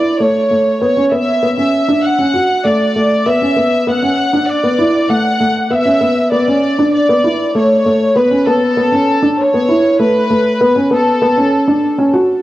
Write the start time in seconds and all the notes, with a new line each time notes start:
Already playing: E4 D5
0.20 A3 C#5
0.51 A3
0.81 B3 C#5
0.97 C#4
1.12 B3 E5
1.43 B3
1.58 C#4
1.89 D4
2.04 F#5
2.19 C#4
2.34 F#4
2.65 A3 D5
2.96 A3
3.26 B3 E5
3.41 C#4
3.56 B3
3.87 B3 F#5
4.02 C#4
4.33 D4
4.49 D5
4.63 B3
4.79 E4
5.09 A3 F#5
5.40 A3
5.70 B3 E5
5.85 C#4
6.01 B3
6.32 B3 D5
6.48 C#4
6.79 D4
6.93 D5
7.09 B3
7.24 E4
7.55 A3 C#5
7.86 A3
8.16 B3 B4
8.31 C#4
8.47 B3 A4
8.77 B3
8.92 C#4
9.23 D4
9.39 C#5
9.54 B3
9.69 E4
9.99 A3 B4
10.30 A3
10.61 B3
10.76 C#4
10.91 B3 A4
11.22 B3
11.38 C#4
11.68 D4
11.98 C#4
12.14 F#4